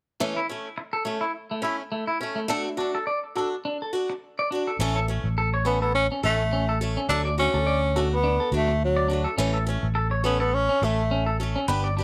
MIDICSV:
0, 0, Header, 1, 7, 480
1, 0, Start_track
1, 0, Tempo, 574163
1, 166, Time_signature, 4, 2, 24, 8
1, 10065, End_track
2, 0, Start_track
2, 0, Title_t, "Clean electric guitar"
2, 0, Program_c, 0, 27
2, 175, Note_on_c, 0, 57, 78
2, 270, Note_off_c, 0, 57, 0
2, 305, Note_on_c, 0, 64, 59
2, 383, Note_off_c, 0, 64, 0
2, 778, Note_on_c, 0, 69, 64
2, 859, Note_off_c, 0, 69, 0
2, 880, Note_on_c, 0, 57, 59
2, 981, Note_off_c, 0, 57, 0
2, 1011, Note_on_c, 0, 64, 60
2, 1094, Note_off_c, 0, 64, 0
2, 1264, Note_on_c, 0, 57, 59
2, 1342, Note_off_c, 0, 57, 0
2, 1364, Note_on_c, 0, 64, 61
2, 1464, Note_off_c, 0, 64, 0
2, 1602, Note_on_c, 0, 57, 64
2, 1702, Note_off_c, 0, 57, 0
2, 1735, Note_on_c, 0, 64, 66
2, 1817, Note_off_c, 0, 64, 0
2, 1969, Note_on_c, 0, 57, 55
2, 2053, Note_off_c, 0, 57, 0
2, 2088, Note_on_c, 0, 69, 87
2, 2186, Note_off_c, 0, 69, 0
2, 2326, Note_on_c, 0, 62, 64
2, 2425, Note_off_c, 0, 62, 0
2, 2463, Note_on_c, 0, 69, 67
2, 2542, Note_off_c, 0, 69, 0
2, 2565, Note_on_c, 0, 74, 75
2, 2664, Note_off_c, 0, 74, 0
2, 2814, Note_on_c, 0, 69, 68
2, 2910, Note_off_c, 0, 69, 0
2, 3052, Note_on_c, 0, 62, 72
2, 3148, Note_off_c, 0, 62, 0
2, 3193, Note_on_c, 0, 69, 61
2, 3268, Note_off_c, 0, 69, 0
2, 3670, Note_on_c, 0, 74, 68
2, 3746, Note_off_c, 0, 74, 0
2, 3768, Note_on_c, 0, 62, 68
2, 3865, Note_off_c, 0, 62, 0
2, 3907, Note_on_c, 0, 69, 59
2, 3984, Note_off_c, 0, 69, 0
2, 4017, Note_on_c, 0, 61, 81
2, 4111, Note_off_c, 0, 61, 0
2, 4146, Note_on_c, 0, 69, 64
2, 4224, Note_off_c, 0, 69, 0
2, 4496, Note_on_c, 0, 69, 75
2, 4591, Note_off_c, 0, 69, 0
2, 4628, Note_on_c, 0, 73, 62
2, 4705, Note_off_c, 0, 73, 0
2, 4731, Note_on_c, 0, 61, 64
2, 4827, Note_off_c, 0, 61, 0
2, 4866, Note_on_c, 0, 69, 67
2, 4943, Note_off_c, 0, 69, 0
2, 5114, Note_on_c, 0, 61, 58
2, 5188, Note_off_c, 0, 61, 0
2, 5214, Note_on_c, 0, 69, 69
2, 5309, Note_off_c, 0, 69, 0
2, 5456, Note_on_c, 0, 61, 70
2, 5551, Note_off_c, 0, 61, 0
2, 5591, Note_on_c, 0, 69, 70
2, 5667, Note_off_c, 0, 69, 0
2, 5827, Note_on_c, 0, 61, 55
2, 5904, Note_off_c, 0, 61, 0
2, 5935, Note_on_c, 0, 69, 87
2, 6030, Note_off_c, 0, 69, 0
2, 6061, Note_on_c, 0, 74, 66
2, 6141, Note_off_c, 0, 74, 0
2, 6304, Note_on_c, 0, 69, 70
2, 6382, Note_off_c, 0, 69, 0
2, 6409, Note_on_c, 0, 74, 78
2, 6506, Note_off_c, 0, 74, 0
2, 6655, Note_on_c, 0, 69, 68
2, 6749, Note_off_c, 0, 69, 0
2, 6886, Note_on_c, 0, 62, 73
2, 6984, Note_off_c, 0, 62, 0
2, 7023, Note_on_c, 0, 69, 68
2, 7101, Note_off_c, 0, 69, 0
2, 7495, Note_on_c, 0, 74, 71
2, 7576, Note_off_c, 0, 74, 0
2, 7594, Note_on_c, 0, 62, 65
2, 7696, Note_off_c, 0, 62, 0
2, 7727, Note_on_c, 0, 69, 59
2, 7811, Note_off_c, 0, 69, 0
2, 7838, Note_on_c, 0, 61, 83
2, 7939, Note_off_c, 0, 61, 0
2, 7972, Note_on_c, 0, 69, 67
2, 8054, Note_off_c, 0, 69, 0
2, 8319, Note_on_c, 0, 69, 80
2, 8420, Note_off_c, 0, 69, 0
2, 8453, Note_on_c, 0, 73, 67
2, 8535, Note_off_c, 0, 73, 0
2, 8567, Note_on_c, 0, 61, 70
2, 8664, Note_off_c, 0, 61, 0
2, 8696, Note_on_c, 0, 69, 64
2, 8777, Note_off_c, 0, 69, 0
2, 8938, Note_on_c, 0, 61, 62
2, 9018, Note_off_c, 0, 61, 0
2, 9290, Note_on_c, 0, 61, 69
2, 9387, Note_off_c, 0, 61, 0
2, 9417, Note_on_c, 0, 69, 67
2, 9498, Note_off_c, 0, 69, 0
2, 9662, Note_on_c, 0, 61, 58
2, 9741, Note_off_c, 0, 61, 0
2, 9768, Note_on_c, 0, 71, 86
2, 9865, Note_off_c, 0, 71, 0
2, 9897, Note_on_c, 0, 74, 66
2, 9978, Note_off_c, 0, 74, 0
2, 10005, Note_on_c, 0, 62, 66
2, 10065, Note_off_c, 0, 62, 0
2, 10065, End_track
3, 0, Start_track
3, 0, Title_t, "Steel-string acoustic guitar"
3, 0, Program_c, 1, 25
3, 170, Note_on_c, 1, 52, 68
3, 172, Note_on_c, 1, 57, 67
3, 179, Note_on_c, 1, 61, 76
3, 322, Note_off_c, 1, 52, 0
3, 323, Note_off_c, 1, 57, 0
3, 327, Note_off_c, 1, 61, 0
3, 414, Note_on_c, 1, 61, 47
3, 430, Note_on_c, 1, 57, 38
3, 564, Note_off_c, 1, 61, 0
3, 572, Note_off_c, 1, 57, 0
3, 877, Note_on_c, 1, 61, 52
3, 891, Note_on_c, 1, 57, 41
3, 1035, Note_off_c, 1, 61, 0
3, 1042, Note_off_c, 1, 57, 0
3, 1353, Note_on_c, 1, 61, 52
3, 1375, Note_on_c, 1, 57, 41
3, 1514, Note_off_c, 1, 61, 0
3, 1525, Note_off_c, 1, 57, 0
3, 1844, Note_on_c, 1, 61, 46
3, 1864, Note_on_c, 1, 57, 41
3, 1999, Note_off_c, 1, 61, 0
3, 2009, Note_off_c, 1, 57, 0
3, 2076, Note_on_c, 1, 57, 77
3, 2085, Note_on_c, 1, 62, 77
3, 2092, Note_on_c, 1, 66, 83
3, 2235, Note_off_c, 1, 57, 0
3, 2240, Note_off_c, 1, 62, 0
3, 2243, Note_off_c, 1, 66, 0
3, 2317, Note_on_c, 1, 66, 52
3, 2343, Note_on_c, 1, 62, 42
3, 2476, Note_off_c, 1, 66, 0
3, 2489, Note_off_c, 1, 62, 0
3, 2804, Note_on_c, 1, 66, 48
3, 2826, Note_on_c, 1, 62, 43
3, 2959, Note_off_c, 1, 66, 0
3, 2970, Note_off_c, 1, 62, 0
3, 3284, Note_on_c, 1, 66, 49
3, 3303, Note_on_c, 1, 62, 44
3, 3439, Note_off_c, 1, 66, 0
3, 3449, Note_off_c, 1, 62, 0
3, 3779, Note_on_c, 1, 66, 51
3, 3803, Note_on_c, 1, 62, 40
3, 3926, Note_off_c, 1, 66, 0
3, 3938, Note_off_c, 1, 62, 0
3, 4011, Note_on_c, 1, 52, 77
3, 4022, Note_on_c, 1, 57, 77
3, 4022, Note_on_c, 1, 61, 75
3, 4024, Note_on_c, 1, 69, 86
3, 4162, Note_off_c, 1, 52, 0
3, 4168, Note_off_c, 1, 57, 0
3, 4168, Note_off_c, 1, 61, 0
3, 4169, Note_off_c, 1, 69, 0
3, 4257, Note_on_c, 1, 61, 44
3, 4269, Note_on_c, 1, 57, 42
3, 4406, Note_off_c, 1, 61, 0
3, 4411, Note_off_c, 1, 57, 0
3, 4723, Note_on_c, 1, 69, 50
3, 4737, Note_on_c, 1, 57, 39
3, 4878, Note_off_c, 1, 69, 0
3, 4885, Note_off_c, 1, 57, 0
3, 5211, Note_on_c, 1, 69, 47
3, 5221, Note_on_c, 1, 61, 47
3, 5230, Note_on_c, 1, 57, 37
3, 5362, Note_off_c, 1, 69, 0
3, 5367, Note_off_c, 1, 61, 0
3, 5371, Note_off_c, 1, 57, 0
3, 5693, Note_on_c, 1, 69, 49
3, 5701, Note_on_c, 1, 61, 46
3, 5712, Note_on_c, 1, 57, 39
3, 5843, Note_off_c, 1, 69, 0
3, 5847, Note_off_c, 1, 61, 0
3, 5852, Note_off_c, 1, 57, 0
3, 5929, Note_on_c, 1, 54, 61
3, 5938, Note_on_c, 1, 66, 81
3, 5940, Note_on_c, 1, 57, 70
3, 6081, Note_off_c, 1, 54, 0
3, 6085, Note_off_c, 1, 66, 0
3, 6086, Note_off_c, 1, 57, 0
3, 6169, Note_on_c, 1, 66, 46
3, 6182, Note_on_c, 1, 62, 44
3, 6194, Note_on_c, 1, 57, 38
3, 6321, Note_off_c, 1, 66, 0
3, 6327, Note_off_c, 1, 62, 0
3, 6334, Note_off_c, 1, 57, 0
3, 6655, Note_on_c, 1, 66, 52
3, 6662, Note_on_c, 1, 62, 48
3, 6668, Note_on_c, 1, 57, 41
3, 6804, Note_off_c, 1, 66, 0
3, 6808, Note_off_c, 1, 62, 0
3, 6811, Note_off_c, 1, 57, 0
3, 7123, Note_on_c, 1, 66, 47
3, 7138, Note_on_c, 1, 62, 49
3, 7142, Note_on_c, 1, 57, 39
3, 7278, Note_off_c, 1, 66, 0
3, 7285, Note_off_c, 1, 62, 0
3, 7288, Note_off_c, 1, 57, 0
3, 7604, Note_on_c, 1, 66, 48
3, 7617, Note_on_c, 1, 62, 46
3, 7634, Note_on_c, 1, 57, 42
3, 7758, Note_off_c, 1, 66, 0
3, 7765, Note_off_c, 1, 62, 0
3, 7774, Note_off_c, 1, 57, 0
3, 7844, Note_on_c, 1, 57, 82
3, 7846, Note_on_c, 1, 52, 80
3, 7854, Note_on_c, 1, 69, 83
3, 7856, Note_on_c, 1, 61, 81
3, 7998, Note_off_c, 1, 57, 0
3, 7999, Note_off_c, 1, 52, 0
3, 8004, Note_off_c, 1, 69, 0
3, 8005, Note_off_c, 1, 61, 0
3, 8096, Note_on_c, 1, 61, 53
3, 8109, Note_on_c, 1, 57, 44
3, 8245, Note_off_c, 1, 61, 0
3, 8251, Note_off_c, 1, 57, 0
3, 8559, Note_on_c, 1, 69, 51
3, 8566, Note_on_c, 1, 61, 45
3, 8578, Note_on_c, 1, 57, 43
3, 8716, Note_off_c, 1, 69, 0
3, 8719, Note_off_c, 1, 61, 0
3, 8725, Note_off_c, 1, 57, 0
3, 9053, Note_on_c, 1, 69, 47
3, 9064, Note_on_c, 1, 61, 41
3, 9072, Note_on_c, 1, 57, 38
3, 9203, Note_off_c, 1, 69, 0
3, 9209, Note_off_c, 1, 61, 0
3, 9212, Note_off_c, 1, 57, 0
3, 9529, Note_on_c, 1, 69, 48
3, 9536, Note_on_c, 1, 61, 47
3, 9555, Note_on_c, 1, 57, 41
3, 9681, Note_off_c, 1, 69, 0
3, 9685, Note_off_c, 1, 61, 0
3, 9694, Note_off_c, 1, 57, 0
3, 9764, Note_on_c, 1, 59, 68
3, 9772, Note_on_c, 1, 62, 75
3, 9775, Note_on_c, 1, 67, 91
3, 9919, Note_off_c, 1, 59, 0
3, 9923, Note_off_c, 1, 62, 0
3, 9924, Note_off_c, 1, 67, 0
3, 10019, Note_on_c, 1, 67, 55
3, 10035, Note_on_c, 1, 62, 48
3, 10065, Note_off_c, 1, 62, 0
3, 10065, Note_off_c, 1, 67, 0
3, 10065, End_track
4, 0, Start_track
4, 0, Title_t, "Tenor saxophone"
4, 0, Program_c, 2, 66
4, 4730, Note_on_c, 2, 59, 81
4, 4851, Note_off_c, 2, 59, 0
4, 4863, Note_on_c, 2, 59, 77
4, 4961, Note_off_c, 2, 59, 0
4, 4970, Note_on_c, 2, 61, 89
4, 5077, Note_off_c, 2, 61, 0
4, 5225, Note_on_c, 2, 57, 78
4, 5662, Note_off_c, 2, 57, 0
4, 5926, Note_on_c, 2, 62, 90
4, 6034, Note_off_c, 2, 62, 0
4, 6181, Note_on_c, 2, 61, 93
4, 6752, Note_off_c, 2, 61, 0
4, 6804, Note_on_c, 2, 59, 90
4, 7115, Note_off_c, 2, 59, 0
4, 7158, Note_on_c, 2, 57, 79
4, 7366, Note_off_c, 2, 57, 0
4, 7391, Note_on_c, 2, 54, 73
4, 7725, Note_off_c, 2, 54, 0
4, 8569, Note_on_c, 2, 59, 85
4, 8690, Note_off_c, 2, 59, 0
4, 8699, Note_on_c, 2, 59, 88
4, 8813, Note_on_c, 2, 61, 101
4, 8826, Note_off_c, 2, 59, 0
4, 9060, Note_on_c, 2, 57, 81
4, 9073, Note_off_c, 2, 61, 0
4, 9533, Note_off_c, 2, 57, 0
4, 10065, End_track
5, 0, Start_track
5, 0, Title_t, "Fingered electric bass"
5, 0, Program_c, 3, 33
5, 4005, Note_on_c, 3, 33, 82
5, 4320, Note_off_c, 3, 33, 0
5, 4378, Note_on_c, 3, 33, 83
5, 5078, Note_off_c, 3, 33, 0
5, 5214, Note_on_c, 3, 33, 76
5, 5819, Note_off_c, 3, 33, 0
5, 5927, Note_on_c, 3, 38, 82
5, 6241, Note_off_c, 3, 38, 0
5, 6301, Note_on_c, 3, 38, 85
5, 7000, Note_off_c, 3, 38, 0
5, 7120, Note_on_c, 3, 38, 77
5, 7731, Note_off_c, 3, 38, 0
5, 7841, Note_on_c, 3, 33, 90
5, 8158, Note_off_c, 3, 33, 0
5, 8217, Note_on_c, 3, 33, 86
5, 8917, Note_off_c, 3, 33, 0
5, 9043, Note_on_c, 3, 33, 78
5, 9653, Note_off_c, 3, 33, 0
5, 9768, Note_on_c, 3, 31, 89
5, 10065, Note_off_c, 3, 31, 0
5, 10065, End_track
6, 0, Start_track
6, 0, Title_t, "Muted clean electric guitar strokes"
6, 649, Note_on_c, 9, 29, 72
6, 733, Note_off_c, 9, 29, 0
6, 3424, Note_on_c, 9, 29, 54
6, 3508, Note_off_c, 9, 29, 0
6, 6175, Note_on_c, 9, 29, 66
6, 6258, Note_off_c, 9, 29, 0
6, 7259, Note_on_c, 9, 29, 60
6, 7343, Note_off_c, 9, 29, 0
6, 9050, Note_on_c, 9, 29, 68
6, 9134, Note_off_c, 9, 29, 0
6, 10065, End_track
7, 0, Start_track
7, 0, Title_t, "Muted steel-string acoustic guitar strokes"
7, 4249, Note_on_c, 9, 29, 52
7, 4332, Note_off_c, 9, 29, 0
7, 4731, Note_on_c, 9, 29, 45
7, 4815, Note_off_c, 9, 29, 0
7, 5938, Note_on_c, 9, 29, 74
7, 6022, Note_off_c, 9, 29, 0
7, 8080, Note_on_c, 9, 29, 54
7, 8164, Note_off_c, 9, 29, 0
7, 10065, End_track
0, 0, End_of_file